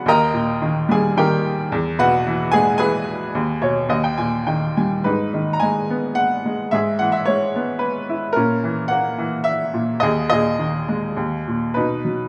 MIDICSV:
0, 0, Header, 1, 2, 480
1, 0, Start_track
1, 0, Key_signature, 5, "minor"
1, 0, Tempo, 546946
1, 61, Time_signature, 3, 2, 24, 8
1, 3419, Tempo, 578592
1, 4859, Tempo, 547945
1, 8219, Tempo, 561798
1, 9179, Tempo, 584226
1, 10569, End_track
2, 0, Start_track
2, 0, Title_t, "Upright piano"
2, 0, Program_c, 0, 0
2, 0, Control_c, 0, 64, 127
2, 51, Note_on_c, 0, 39, 60
2, 72, Control_c, 0, 64, 0
2, 72, Note_on_c, 0, 79, 60
2, 74, Note_on_c, 0, 75, 68
2, 75, Note_on_c, 0, 70, 60
2, 77, Note_on_c, 0, 82, 90
2, 230, Control_c, 0, 64, 127
2, 294, Note_on_c, 0, 46, 46
2, 542, Note_on_c, 0, 51, 50
2, 765, Note_off_c, 0, 79, 0
2, 766, Note_off_c, 0, 70, 0
2, 766, Note_off_c, 0, 75, 0
2, 767, Note_off_c, 0, 82, 0
2, 779, Note_on_c, 0, 55, 54
2, 802, Note_on_c, 0, 80, 70
2, 805, Note_on_c, 0, 68, 60
2, 1014, Note_off_c, 0, 51, 0
2, 1025, Note_off_c, 0, 68, 0
2, 1027, Note_on_c, 0, 51, 54
2, 1031, Note_on_c, 0, 79, 66
2, 1035, Note_on_c, 0, 67, 53
2, 1045, Note_on_c, 0, 70, 53
2, 1047, Note_off_c, 0, 80, 0
2, 1242, Note_off_c, 0, 46, 0
2, 1369, Note_off_c, 0, 79, 0
2, 1372, Note_off_c, 0, 67, 0
2, 1377, Note_off_c, 0, 70, 0
2, 1478, Note_off_c, 0, 39, 0
2, 1488, Note_off_c, 0, 55, 0
2, 1499, Note_off_c, 0, 51, 0
2, 1510, Note_on_c, 0, 40, 69
2, 1530, Control_c, 0, 64, 0
2, 1689, Control_c, 0, 64, 127
2, 1743, Note_on_c, 0, 47, 57
2, 1746, Note_on_c, 0, 71, 66
2, 1748, Note_on_c, 0, 66, 66
2, 1751, Note_on_c, 0, 78, 93
2, 1989, Note_on_c, 0, 52, 53
2, 2192, Note_off_c, 0, 71, 0
2, 2194, Note_off_c, 0, 66, 0
2, 2195, Note_off_c, 0, 78, 0
2, 2208, Note_on_c, 0, 80, 94
2, 2223, Note_on_c, 0, 68, 72
2, 2231, Note_on_c, 0, 56, 53
2, 2425, Note_off_c, 0, 80, 0
2, 2439, Note_off_c, 0, 68, 0
2, 2439, Note_on_c, 0, 80, 88
2, 2447, Note_off_c, 0, 52, 0
2, 2451, Note_on_c, 0, 71, 63
2, 2452, Note_on_c, 0, 68, 69
2, 2460, Note_on_c, 0, 52, 51
2, 2663, Note_off_c, 0, 47, 0
2, 2897, Note_off_c, 0, 40, 0
2, 2914, Note_off_c, 0, 56, 0
2, 2919, Note_off_c, 0, 52, 0
2, 2939, Note_on_c, 0, 39, 59
2, 2945, Control_c, 0, 64, 0
2, 3081, Control_c, 0, 64, 127
2, 3175, Note_on_c, 0, 73, 57
2, 3176, Note_on_c, 0, 47, 43
2, 3399, Note_off_c, 0, 39, 0
2, 3401, Note_off_c, 0, 73, 0
2, 3411, Note_off_c, 0, 47, 0
2, 3412, Note_on_c, 0, 39, 55
2, 3419, Note_on_c, 0, 75, 53
2, 3428, Control_c, 0, 64, 0
2, 3527, Note_off_c, 0, 75, 0
2, 3536, Note_on_c, 0, 79, 49
2, 3595, Control_c, 0, 64, 127
2, 3639, Note_off_c, 0, 80, 0
2, 3647, Note_off_c, 0, 79, 0
2, 3652, Note_on_c, 0, 80, 55
2, 3656, Note_on_c, 0, 46, 45
2, 3861, Note_off_c, 0, 71, 0
2, 3862, Note_off_c, 0, 68, 0
2, 3882, Note_off_c, 0, 80, 0
2, 3892, Note_on_c, 0, 79, 46
2, 3897, Note_on_c, 0, 51, 40
2, 4127, Note_off_c, 0, 79, 0
2, 4146, Note_on_c, 0, 55, 36
2, 4146, Note_on_c, 0, 80, 43
2, 4358, Note_off_c, 0, 39, 0
2, 4369, Note_off_c, 0, 46, 0
2, 4370, Note_on_c, 0, 71, 59
2, 4371, Note_off_c, 0, 80, 0
2, 4373, Note_off_c, 0, 51, 0
2, 4377, Note_on_c, 0, 44, 51
2, 4381, Note_off_c, 0, 55, 0
2, 4383, Note_on_c, 0, 63, 46
2, 4401, Control_c, 0, 64, 0
2, 4560, Control_c, 0, 64, 127
2, 4613, Note_on_c, 0, 51, 37
2, 4777, Note_on_c, 0, 82, 62
2, 4804, Note_off_c, 0, 71, 0
2, 4830, Note_on_c, 0, 80, 74
2, 4846, Note_off_c, 0, 82, 0
2, 4852, Note_on_c, 0, 56, 41
2, 5064, Note_off_c, 0, 63, 0
2, 5097, Note_on_c, 0, 59, 43
2, 5296, Note_off_c, 0, 80, 0
2, 5313, Note_on_c, 0, 78, 76
2, 5552, Note_off_c, 0, 51, 0
2, 5567, Note_off_c, 0, 56, 0
2, 5581, Note_on_c, 0, 56, 43
2, 5786, Note_off_c, 0, 44, 0
2, 5803, Note_off_c, 0, 59, 0
2, 5806, Note_on_c, 0, 76, 77
2, 5817, Note_off_c, 0, 56, 0
2, 5817, Note_on_c, 0, 44, 58
2, 5827, Note_off_c, 0, 78, 0
2, 5835, Note_on_c, 0, 68, 53
2, 5839, Control_c, 0, 64, 0
2, 6014, Control_c, 0, 64, 127
2, 6048, Note_on_c, 0, 78, 67
2, 6063, Note_on_c, 0, 52, 44
2, 6064, Note_off_c, 0, 76, 0
2, 6163, Note_on_c, 0, 76, 72
2, 6181, Note_off_c, 0, 78, 0
2, 6281, Note_on_c, 0, 73, 69
2, 6299, Note_off_c, 0, 76, 0
2, 6301, Note_on_c, 0, 56, 42
2, 6514, Note_off_c, 0, 68, 0
2, 6544, Note_on_c, 0, 59, 48
2, 6737, Note_off_c, 0, 73, 0
2, 6749, Note_on_c, 0, 71, 70
2, 6990, Note_off_c, 0, 52, 0
2, 7015, Note_on_c, 0, 64, 46
2, 7096, Note_off_c, 0, 71, 0
2, 7216, Note_off_c, 0, 44, 0
2, 7219, Note_on_c, 0, 70, 71
2, 7225, Note_off_c, 0, 56, 0
2, 7235, Note_off_c, 0, 59, 0
2, 7247, Note_off_c, 0, 64, 0
2, 7248, Note_on_c, 0, 61, 55
2, 7250, Note_on_c, 0, 46, 55
2, 7268, Control_c, 0, 64, 0
2, 7412, Control_c, 0, 64, 127
2, 7492, Note_on_c, 0, 52, 46
2, 7704, Note_on_c, 0, 78, 74
2, 7730, Note_on_c, 0, 58, 46
2, 7731, Note_off_c, 0, 70, 0
2, 7938, Note_off_c, 0, 61, 0
2, 7958, Note_off_c, 0, 52, 0
2, 7971, Note_on_c, 0, 52, 49
2, 8169, Note_off_c, 0, 78, 0
2, 8193, Note_on_c, 0, 76, 83
2, 8435, Note_off_c, 0, 46, 0
2, 8448, Note_on_c, 0, 46, 49
2, 8666, Note_off_c, 0, 58, 0
2, 8673, Note_off_c, 0, 52, 0
2, 8674, Note_on_c, 0, 75, 69
2, 8685, Note_off_c, 0, 46, 0
2, 8698, Note_on_c, 0, 39, 64
2, 8698, Note_on_c, 0, 68, 54
2, 8699, Note_off_c, 0, 76, 0
2, 8709, Control_c, 0, 64, 0
2, 8868, Control_c, 0, 64, 127
2, 8914, Note_off_c, 0, 75, 0
2, 8926, Note_on_c, 0, 75, 78
2, 8938, Note_on_c, 0, 46, 42
2, 8943, Note_off_c, 0, 68, 0
2, 8956, Note_on_c, 0, 68, 47
2, 9179, Note_on_c, 0, 51, 42
2, 9421, Note_on_c, 0, 56, 44
2, 9628, Note_off_c, 0, 39, 0
2, 9634, Note_off_c, 0, 46, 0
2, 9641, Note_off_c, 0, 51, 0
2, 9651, Note_off_c, 0, 56, 0
2, 9652, Note_on_c, 0, 39, 51
2, 9668, Control_c, 0, 64, 0
2, 9793, Control_c, 0, 64, 127
2, 9860, Note_off_c, 0, 75, 0
2, 9874, Note_off_c, 0, 68, 0
2, 9905, Note_on_c, 0, 46, 40
2, 10125, Note_on_c, 0, 71, 64
2, 10126, Note_off_c, 0, 39, 0
2, 10138, Note_off_c, 0, 46, 0
2, 10144, Note_on_c, 0, 63, 45
2, 10145, Note_on_c, 0, 47, 49
2, 10153, Control_c, 0, 64, 0
2, 10307, Control_c, 0, 64, 127
2, 10375, Note_on_c, 0, 54, 40
2, 10569, Note_off_c, 0, 47, 0
2, 10569, Note_off_c, 0, 54, 0
2, 10569, Note_off_c, 0, 63, 0
2, 10569, Note_off_c, 0, 71, 0
2, 10569, End_track
0, 0, End_of_file